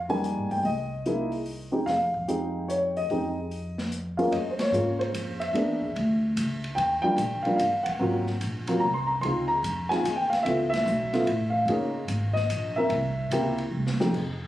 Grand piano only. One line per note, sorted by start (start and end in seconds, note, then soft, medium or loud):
0.09 0.62 G3 medium
0.09 0.61 G#3 medium
0.09 0.61 A#3 medium
0.09 0.62 D#4 soft
0.09 0.52 G#5 medium
0.51 0.64 G5 medium
0.65 1.69 D#5 medium
1.06 1.30 G#3 medium
1.06 1.30 A#3 soft
1.06 1.30 D#4 soft
1.06 1.30 E4 medium
1.72 1.85 G#3 medium
1.72 1.85 C4 soft
1.72 1.85 D#4 soft
1.72 1.85 G4 medium
1.86 2.71 F5 medium
2.28 2.91 G#3 medium
2.28 2.91 C4 soft
2.28 2.91 D#4 soft
2.28 2.90 G4 medium
2.68 2.96 C#5 medium
2.97 3.88 D#5 medium
3.11 3.34 G#3 soft
3.11 3.35 C4 soft
3.11 3.35 D#4 soft
3.11 3.35 G4 soft
4.17 4.31 F#2 medium
4.17 4.31 G#3 medium
4.17 4.31 A#3 medium
4.17 4.31 C#4 medium
4.17 4.31 F4 medium
4.17 4.31 F5 medium
4.32 4.48 D#5 medium
4.51 4.60 C5 medium
4.60 5.02 C#5 medium
4.73 5.35 G#3 soft
4.73 5.36 A#3 soft
4.73 5.36 C#4 soft
4.73 5.36 F4 medium
4.99 5.42 C5 medium
5.40 6.59 E5 medium
5.54 5.79 G#3 medium
5.54 5.79 A#3 soft
5.54 5.79 B3 soft
5.54 5.79 D4 medium
6.75 7.00 G5 medium
7.02 7.17 G3 medium
7.02 7.17 A#3 soft
7.02 7.17 D4 medium
7.02 7.17 F4 medium
7.02 7.45 G5 loud
7.43 7.58 G3 medium
7.43 7.58 A#3 soft
7.43 7.58 D4 medium
7.43 7.58 F4 medium
7.43 7.55 F5 medium
7.56 7.86 F5 medium
7.83 8.76 F#5 medium
7.99 8.24 F#3 medium
7.99 8.24 A#3 medium
7.99 8.24 C4 soft
7.99 8.24 F4 medium
8.68 8.81 F#3 medium
8.68 8.80 A#3 medium
8.68 8.81 C4 medium
8.68 8.81 F4 medium
8.80 8.95 A#5 medium
8.94 9.09 C6 medium
9.07 9.12 A#5 medium
9.21 9.48 G#3 soft
9.21 9.48 C4 soft
9.21 9.48 D#4 soft
9.21 9.48 F4 medium
9.21 9.50 C6 medium
9.48 9.91 A#5 medium
9.89 10.03 G#3 medium
9.89 10.04 C4 soft
9.89 10.03 D#4 soft
9.89 10.04 F4 medium
9.89 10.18 G#5 medium
10.16 10.31 G5 medium
10.30 10.35 F5 medium
10.43 10.70 A3 soft
10.43 10.70 B3 soft
10.43 10.57 E5 medium
10.47 10.70 E4 soft
10.47 10.71 F4 medium
10.70 11.55 E5 loud
11.13 11.26 A3 medium
11.13 11.26 B3 medium
11.13 11.26 E4 medium
11.13 11.26 F4 medium
11.50 12.30 F5 medium
11.69 11.93 A#3 medium
11.69 11.92 C#4 medium
11.69 11.93 D#4 medium
11.69 11.93 G#4 medium
12.33 12.72 D#5 medium
12.76 12.89 A#3 medium
12.76 12.89 C4 medium
12.76 12.89 E4 medium
12.76 12.90 A#4 medium
12.76 13.68 E5 medium
13.32 13.56 A#3 medium
13.32 13.56 C4 medium
13.32 13.56 E4 medium
13.32 13.56 G4 medium
14.00 14.12 F2 medium
14.00 14.12 G#3 medium
14.00 14.12 C4 medium
14.00 14.12 D#4 medium
14.00 14.12 G4 medium